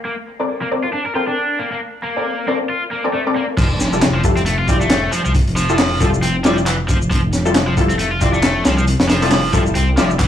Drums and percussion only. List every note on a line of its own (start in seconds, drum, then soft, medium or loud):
3.57 kick loud
3.57 closed hi-hat medium
3.57 crash medium
3.57 shaker soft
3.80 snare soft
3.80 closed hi-hat medium
3.80 shaker medium
3.93 shaker soft
4.02 snare loud
4.02 clap loud
4.02 closed hi-hat medium
4.02 shaker soft
4.24 kick loud
4.24 closed hi-hat medium
4.24 shaker medium
4.37 closed hi-hat soft
4.37 shaker soft
4.46 closed hi-hat medium
4.46 shaker soft
4.68 kick loud
4.68 closed hi-hat medium
4.68 shaker medium
4.81 shaker soft
4.90 snare loud
4.90 clap loud
4.90 closed hi-hat medium
4.90 shaker soft
5.12 closed hi-hat medium
5.12 shaker medium
5.25 shaker soft
5.35 kick loud
5.35 closed hi-hat medium
5.35 shaker soft
5.47 closed hi-hat soft
5.57 closed hi-hat medium
5.57 shaker medium
5.69 shaker soft
5.79 snare loud
5.79 clap loud
5.79 open hi-hat medium
5.79 shaker soft
6.00 kick medium
6.00 closed hi-hat medium
6.00 shaker medium
6.14 shaker soft
6.23 closed hi-hat loud
6.23 shaker soft
6.44 snare loud
6.44 closed hi-hat medium
6.44 shaker medium
6.58 shaker soft
6.67 clap loud
6.67 closed hi-hat medium
6.67 shaker soft
6.89 kick loud
6.89 closed hi-hat medium
6.89 shaker medium
7.02 shaker soft
7.11 kick loud
7.11 closed hi-hat medium
7.11 shaker soft
7.33 snare soft
7.33 closed hi-hat medium
7.33 shaker medium
7.46 shaker soft
7.55 snare loud
7.55 clap loud
7.55 closed hi-hat medium
7.55 shaker soft
7.77 kick medium
7.77 closed hi-hat medium
7.77 shaker medium
7.89 closed hi-hat soft
7.89 shaker soft
7.99 closed hi-hat medium
7.99 shaker soft
8.21 kick medium
8.21 closed hi-hat medium
8.21 shaker medium
8.34 shaker soft
8.43 snare loud
8.43 clap loud
8.43 closed hi-hat medium
8.43 shaker soft
8.65 snare loud
8.65 closed hi-hat medium
8.65 shaker medium
8.78 shaker soft
8.87 closed hi-hat medium
8.87 shaker soft
9.00 snare loud
9.00 closed hi-hat medium
9.09 snare loud
9.09 closed hi-hat medium
9.09 shaker medium
9.22 closed hi-hat medium
9.22 shaker soft
9.32 snare loud
9.32 clap loud
9.32 open hi-hat medium
9.32 shaker soft
9.53 kick loud
9.53 closed hi-hat medium
9.53 shaker medium
9.66 shaker soft
9.75 closed hi-hat loud
9.75 shaker soft
9.97 snare loud
9.97 closed hi-hat medium
9.97 shaker medium
10.11 shaker soft
10.19 kick medium
10.19 clap loud
10.19 closed hi-hat medium
10.19 shaker soft